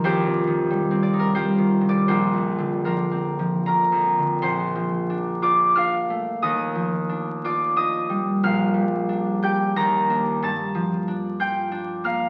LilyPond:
<<
  \new Staff \with { instrumentName = "Harp" } { \time 3/4 \key bes \major \tempo 4 = 90 << { <bes' c'' g''>4. d''16 bes'16 c''8. d''16 | c''4 bes'4 bes''4 | c'''4. d'''8 f'''4 | ees'''4. d'''8 ees'''4 |
f'''4. g'''8 bes'''4 | a'''4. g'''4 f'''8 | } \\ { <f' g' ees''>2 <f' g'>4 | f'4 <d' f'>4 bes'4 | c''4. d''8 f''4 | ees''4. d''8 ees''4 |
f''4. g''8 bes''4 | a''4. g''4 f''8 | } >> }
  \new Staff \with { instrumentName = "Harp" } { \clef bass \time 3/4 \key bes \major \tuplet 3/2 { <f, f g ees'>8 c8 ees8 g8 c'8 ees'8 g8 ees8 c8 } | \tuplet 3/2 { bes,,8 f,8 d8 f8 c'8 f8 d8 f,8 d8 } | bes,,8 f8 d'8 f'8 d'8 a8 | ees,8 f8 d'8 f'8 d'8 g8 |
bes,,8 g8 d'8 g'8 ees,8 <bes d'>8 | g,8 f8 d'8 f'8 d'8 bes8 | }
>>